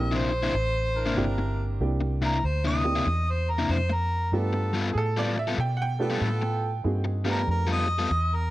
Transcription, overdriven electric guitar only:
0.11 0.30 C3 medium
0.11 0.31 A#3 medium
0.11 0.31 D4 medium
0.11 0.31 E4 medium
0.31 muted overdriven electric guitar stroke medium
0.43 0.53 C3 medium
0.43 0.53 A#3 medium
0.43 0.53 D4 medium
0.43 0.54 E4 loud
0.54 muted overdriven electric guitar stroke soft
1.06 1.24 C3 medium
1.06 1.24 A#3 medium
1.06 1.24 D4 medium
1.06 1.23 E4 medium
1.38 muted overdriven electric guitar stroke soft
2.01 muted overdriven electric guitar stroke soft
2.22 2.36 C3 medium
2.22 2.36 A#3 medium
2.22 2.36 D4 loud
2.22 2.37 E4 loud
2.64 2.84 C3 medium
2.64 2.84 A#3 medium
2.64 2.84 D4 medium
2.64 2.84 E4 medium
2.85 muted overdriven electric guitar stroke soft
2.95 3.06 C3 medium
2.95 3.06 A#3 medium
2.95 3.07 D4 medium
2.95 3.06 E4 loud
3.07 muted overdriven electric guitar stroke soft
3.58 3.76 C3 medium
3.58 3.76 A#3 medium
3.58 3.76 D4 medium
3.58 3.76 E4 medium
3.90 muted overdriven electric guitar stroke medium
4.53 muted overdriven electric guitar stroke medium
4.73 4.88 G3 medium
4.73 4.88 B3 medium
4.73 4.88 F4 medium
4.73 4.89 A4 loud
5.17 5.36 G3 medium
5.17 5.36 B3 medium
5.17 5.36 F4 medium
5.17 5.36 A4 medium
5.37 muted overdriven electric guitar stroke soft
5.47 5.58 G3 medium
5.47 5.58 B3 medium
5.47 5.58 F4 medium
5.47 5.59 A4 loud
5.59 muted overdriven electric guitar stroke soft
6.10 6.28 G3 medium
6.10 6.28 B3 medium
6.10 6.28 F4 medium
6.10 6.28 A4 medium
6.42 muted overdriven electric guitar stroke medium
7.04 muted overdriven electric guitar stroke medium
7.25 7.39 G3 medium
7.25 7.40 B3 medium
7.25 7.40 F4 medium
7.25 7.40 A4 medium
7.67 7.86 G3 medium
7.67 7.86 B3 medium
7.67 7.87 F4 medium
7.67 7.87 A4 medium
7.87 muted overdriven electric guitar stroke soft
7.99 8.09 G3 medium
7.99 8.09 B3 medium
7.99 8.10 F4 medium
7.99 8.10 A4 medium
8.10 muted overdriven electric guitar stroke soft

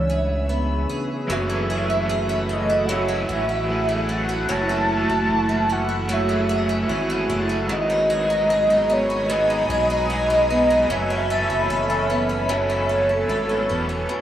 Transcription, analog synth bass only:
0.00 0.86 C#2 medium
1.29 3.25 F#1 medium
3.29 4.45 A1 medium
4.49 5.06 F#1 loud
5.09 5.28 F#1 medium
5.29 6.85 F#1 loud
6.89 7.27 G#1 loud
7.29 7.70 F#1 medium
7.68 9.65 G#1 loud
9.69 10.85 B1 loud
10.89 11.47 F#1 loud
11.49 11.68 F#1 loud
11.70 13.26 F#1 loud
13.29 13.70 G#1 loud
13.69 14.07 E1 loud

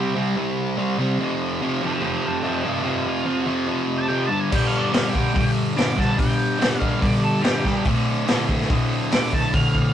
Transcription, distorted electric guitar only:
0.00 0.13 C3 medium
0.00 0.14 G3 loud
0.00 0.15 C4 loud
0.14 0.35 C3 medium
0.14 0.36 G3 medium
0.14 0.37 C4 medium
0.36 0.76 C3 loud
0.36 0.76 G3 loud
0.36 0.78 C4 loud
0.77 0.96 C3 medium
0.77 0.98 G3 loud
0.77 1.00 C4 medium
0.98 1.18 C3 medium
0.98 1.19 G3 medium
0.98 1.20 C4 loud
1.19 1.61 F2 loud
1.19 1.61 C3 loud
1.19 1.63 F3 loud
1.61 1.81 F2 medium
1.61 1.81 C3 medium
1.61 1.82 F3 loud
1.82 2.00 F2 medium
1.82 2.01 C3 medium
1.82 2.02 F3 medium
2.01 2.41 F2 loud
2.01 2.42 C3 loud
2.01 2.43 F3 loud
2.42 2.63 F2 medium
2.42 2.64 C3 loud
2.42 2.64 F3 medium
2.64 2.82 F2 medium
2.64 2.83 C3 medium
2.64 2.83 F3 loud
2.83 3.24 F2 medium
2.83 3.24 C3 loud
2.83 3.25 F3 loud
3.25 3.45 F2 medium
3.25 3.46 C3 medium
3.25 3.46 F3 loud
3.46 3.66 F2 medium
3.46 3.67 C3 medium
3.46 3.67 F3 loud
3.68 4.07 F2 loud
3.68 4.08 C3 loud
3.68 4.08 F3 loud
4.08 4.29 F2 medium
4.08 4.29 C3 medium
4.08 4.30 F3 medium
4.29 4.51 G2 loud
4.29 4.50 D3 loud
4.29 4.52 G3 loud
4.51 4.91 G2 medium
4.51 4.92 D3 loud
4.51 4.93 G3 loud
4.92 5.13 G2 medium
4.92 5.13 D3 medium
4.92 5.14 G3 loud
5.13 5.32 G2 medium
5.13 5.33 D3 medium
5.13 5.34 G3 loud
5.33 5.74 G2 loud
5.33 5.75 D3 loud
5.33 5.75 G3 loud
5.75 5.94 G2 medium
5.75 5.96 D3 medium
5.75 5.96 G3 medium
5.95 6.15 G2 loud
5.95 6.16 D3 medium
5.95 6.16 G3 loud
6.16 6.57 G2 loud
6.16 6.58 D3 loud
6.16 6.57 G3 loud
6.58 6.78 G2 medium
6.58 6.79 D3 medium
6.58 6.79 G3 loud
6.79 6.99 G2 medium
6.79 6.99 D3 medium
6.79 7.00 G3 medium
7.00 7.41 G2 loud
7.00 7.42 D3 loud
7.00 7.43 G3 loud
7.42 7.63 G2 medium
7.42 7.63 D3 loud
7.42 7.64 G3 loud
7.65 7.85 G2 medium
7.65 7.85 D3 loud
7.65 7.85 G3 loud
7.86 8.26 D2 medium
7.86 8.27 A2 loud
7.86 8.28 D3 loud
8.27 8.47 D2 medium
8.27 8.48 A2 medium
8.27 8.49 D3 loud
8.48 8.68 D2 medium
8.48 8.69 A2 loud
8.48 8.70 D3 medium
8.69 9.10 D2 loud
8.69 9.11 A2 loud
8.69 9.12 D3 loud
9.12 9.31 D2 medium
9.12 9.30 A2 medium
9.12 9.32 D3 medium
9.32 9.52 D2 medium
9.32 9.53 A2 loud
9.32 9.53 D3 loud
9.53 9.93 D2 loud
9.53 9.93 A2 loud
9.53 9.93 D3 loud

